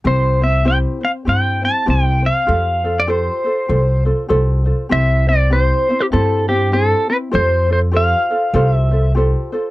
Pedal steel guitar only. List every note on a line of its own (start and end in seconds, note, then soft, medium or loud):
0.07 0.44 C5 medium
0.44 0.67 E5 medium
0.68 0.77 G5 medium
1.05 1.11 F5 medium
1.29 1.62 G5 medium
1.65 1.87 A5 medium
1.90 2.27 G5 medium
2.26 3.00 F5 medium
3.00 3.10 D5 medium
3.10 4.03 C5 medium
4.92 5.28 E5 medium
5.29 5.53 D5 medium
5.53 6.02 C5 medium
6.01 6.06 G4 medium
6.13 6.48 A4 medium
6.49 6.74 G4 medium
6.73 7.09 A4 medium
7.10 7.16 B4 medium
7.35 7.71 C5 medium
7.73 7.79 C5 medium
7.97 8.73 F5 medium
8.73 9.12 E5 medium